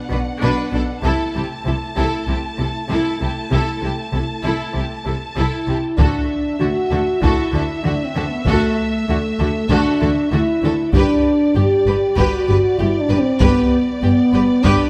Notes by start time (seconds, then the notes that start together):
Already playing: B3 D4 F#5
0.10 B1 B2 D4 B4
0.41 B1 B2 D4 B4
0.72 B1 B2 D4 A4
1.02 C2 C3 A3 E4 A4 A5, taiko
1.35 C2 C3 E4 G4
1.65 C2 C3 E4 A4
1.96 C2 C3 E4 A4, taiko
2.27 C2 C3 E4 G4
2.58 C2 C3 E4 A4
2.89 C2 C3 E4 A4
3.20 C2 C3 E4 G4
3.51 C2 C3 E4 A4
3.81 C2 C3 E4 G4
4.12 C2 C3 E4 A4
4.43 C2 C3 E4 A4
4.74 C2 C3 E4 G4
5.05 C2 C3 E4 A4
5.36 C2 C3 E4 A4
5.67 C2 C3 E4 G4
5.98 D2 D3 D4 F#4 A4 E5, taiko
6.60 D2 D3 F#4
6.91 D2 D3 F#4 A4
7.21 D2 D3 E4 F#4 A4, taiko
7.53 D2 D3 F#4 A4
7.83 D2 D3 D4 F#4
8.05 C4
8.15 D2 D3 F#4 A4
8.26 B3
8.45 D2 D3 A3 F#4 A4, taiko
9.08 D2 D3 A3 F#4
9.39 D2 D3 F#4 A4
9.69 D2 D3 D4 F#4 A4, taiko
10.00 D2 D3 F#4 A4
10.32 D2 D3 E4 F#4
10.62 D2 D3 F#4 A4
10.93 G1 G2 D4 G4 B4 D5, taiko
11.55 G1 G2 G4
11.87 G1 G2 G4 B4
12.17 G1 G2 F#4 G4 B4, taiko
12.48 G1 G2 G4 B4
12.79 G1 G2 E4 G4
13.01 D4
13.10 G1 G2 G4 B4
13.20 C4
13.40 G1 G2 B3 G4 B4, taiko
14.02 G1 G2 B3 G4
14.33 G1 G2 G4 B4
14.63 G1 G2 D4 G4 B4, taiko